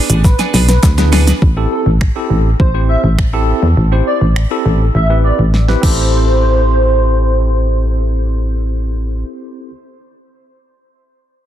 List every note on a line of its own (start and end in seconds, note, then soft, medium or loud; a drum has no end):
0.09 0.35 A1 loud
0.09 0.22 B3 medium
0.09 0.22 D4 medium
0.09 0.22 G#4 medium
0.09 0.22 B4 medium
0.09 closed hi-hat medium
0.09 shaker medium
0.24 0.35 B4 medium
0.24 muted clean electric guitar stroke soft
0.24 kick loud
0.24 snare medium
0.24 shaker medium
0.39 0.52 B3 medium
0.39 0.53 D4 medium
0.39 0.53 G#4 medium
0.39 0.54 B4 medium
0.39 snare medium
0.39 closed hi-hat soft
0.39 shaker soft
0.53 0.79 B1 medium
0.53 0.66 B3 medium
0.53 0.66 D4 medium
0.53 0.66 G#4 medium
0.53 0.67 B4 medium
0.53 snare medium
0.53 open hi-hat medium
0.53 shaker medium
0.69 0.89 B4 medium
0.69 snare medium
0.69 closed hi-hat medium
0.69 shaker medium
0.83 1.33 D2 loud
0.83 muted clean electric guitar stroke soft
0.83 kick loud
0.83 snare loud
0.83 clap medium
0.83 shaker medium
0.98 1.31 B3 medium
0.98 1.31 D4 medium
0.98 1.31 E4 medium
0.98 1.31 G#4 medium
0.98 1.31 B4 medium
0.98 muted clean electric guitar stroke soft
0.98 snare medium
0.98 closed hi-hat soft
0.98 shaker soft
1.12 1.27 B3 medium
1.12 1.27 D4 loud
1.12 1.26 G#4 loud
1.12 1.26 B4 loud
1.12 snare loud
1.12 open hi-hat medium
1.12 shaker medium
1.27 1.40 B3 medium
1.27 1.40 D4 medium
1.27 1.40 G#4 medium
1.27 1.39 B4 medium
1.27 snare loud
1.27 closed hi-hat medium
1.27 shaker medium
1.42 1.67 A1 loud
1.42 kick loud
1.57 1.90 C4 medium
1.57 1.90 E4 medium
1.57 1.90 G4 medium
1.57 1.90 A4 medium
1.71 1.82 A4 medium
1.86 2.11 A1 medium
2.01 finger snap loud
2.01 kick loud
2.15 2.48 C4 medium
2.15 2.49 E4 medium
2.15 2.49 G4 medium
2.15 2.49 A4 medium
2.30 2.55 A1 medium
2.60 2.97 A1 loud
2.60 2.80 C5 medium
2.60 kick loud
2.74 3.07 C4 medium
2.74 3.07 E4 medium
2.74 3.07 G4 medium
2.74 3.08 C5 medium
2.89 2.99 E5 medium
3.04 3.53 A1 medium
3.18 finger snap loud
3.18 kick loud
3.33 3.66 C4 medium
3.33 3.66 E4 medium
3.33 3.66 G4 medium
3.33 3.66 A4 loud
3.63 3.75 E2 medium
3.77 4.02 A1 medium
3.92 4.25 C4 medium
3.92 4.25 E4 medium
3.92 4.25 G4 medium
3.92 4.25 C5 medium
4.07 4.17 D5 medium
4.21 4.46 A1 medium
4.36 finger snap loud
4.51 4.84 C4 medium
4.51 4.84 E4 medium
4.51 4.84 G4 medium
4.51 4.84 A4 medium
4.66 4.90 A1 medium
4.95 5.32 A1 loud
4.95 5.15 E5 medium
5.10 5.43 C4 medium
5.10 5.43 E4 medium
5.10 5.43 G4 medium
5.10 5.43 B4 medium
5.24 5.35 D5 medium
5.39 5.76 A1 medium
5.54 snare medium
5.68 5.80 C4 medium
5.68 5.81 E4 medium
5.68 5.83 G4 medium
5.68 5.83 B4 loud
5.68 snare medium
5.81 9.24 A1 medium
5.81 9.69 C4 medium
5.81 9.70 E4 medium
5.81 9.72 G4 medium
5.81 7.85 C5 medium
5.81 kick loud
5.81 crash medium
5.85 9.73 A4 medium